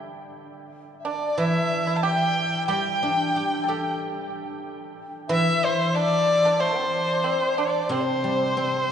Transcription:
0.99 dizi E5
1.05 pipa D4, dizi D5, erhu D5
1.38 guzheng E3, pipa E4, dizi E5, erhu E5
1.87 pipa E4, dizi E5
1.96 erhu A5
2.03 pipa G4, erhu G5, dizi G5
2.68 guzheng G3, pipa G4, erhu G5, dizi G5
3.03 guzheng D4
3.36 guzheng G4
3.63 pipa A4
3.68 pipa G4, guzheng A4
5.28 guzheng E3, pipa E4, dizi E5
5.33 erhu E5
5.65 erhu C5
5.93 pipa D4, dizi D5, erhu D5
6.45 pipa D4
6.60 pipa C4, erhu C5, dizi C5
7.24 pipa C4
7.58 pipa D4, erhu D5
7.89 guzheng C3, pipa C4, erhu C5
7.94 dizi C5
8.00 dizi D5
8.06 dizi C5
8.24 guzheng G3
8.57 guzheng C4

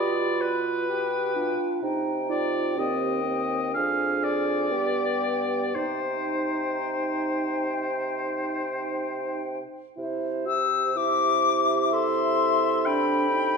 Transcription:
Already playing: bassoon B2, clarinet F4, french horn G4, oboe D5, flute B5
0.41 oboe B4
0.89 clarinet G4, french horn G4, flute G5
1.35 clarinet D4, french horn F4
1.82 bassoon C3, clarinet D#4, french horn D#4, flute G5
2.30 clarinet F4, oboe D5
2.77 bassoon D#2, french horn C4, clarinet G4, oboe D#5, flute G5
3.25 french horn C4
3.73 bassoon F2, french horn D4, clarinet G#4, oboe F5, flute G#5
4.23 oboe D5
4.70 bassoon G2, french horn B3, clarinet G4, flute G5
5.74 bassoon C3, clarinet D#4, french horn D#4, oboe C5, flute G5
9.97 bassoon C3, french horn E4, clarinet C5
10.47 french horn G4, flute E6
10.96 french horn E4, clarinet G4, flute D6
11.93 clarinet A4, oboe E5, flute C6
12.86 french horn D4, oboe G5, flute B5
13.31 french horn D#4

